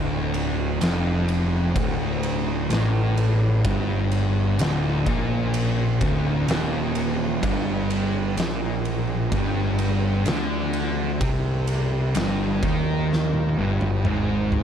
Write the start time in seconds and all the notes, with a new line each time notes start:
Already playing: D1 D2
0.34 ride
0.81 F1 F2, snare, ride
1.29 ride
1.75 D1 D2, kick, ride
2.23 ride
2.70 A1 A2, snare, ride
3.17 ride
3.64 G1 G2, kick, ride
4.12 ride
4.58 D1 D2, snare, ride
5.06 A#1 A#2, kick, ride
5.54 ride
6.01 D1 D2, kick, ride
6.48 D#1 D#2, snare, ride
6.95 ride
7.43 G1 G2, kick, ride
7.90 ride
8.37 A#1 A#2, snare, ride
8.85 ride
9.31 G1 G2, kick, ride
9.79 ride
10.26 D2 D3, snare, ride
10.73 ride
11.20 C2 C3, kick, ride
11.67 ride
12.15 G1 G2, snare, ride
12.62 D#2 D#3, kick, ride
13.13 snare
13.34 high tom
13.58 G1 G2
13.81 mid tom
14.04 G#1 G#2, mid tom
14.52 floor tom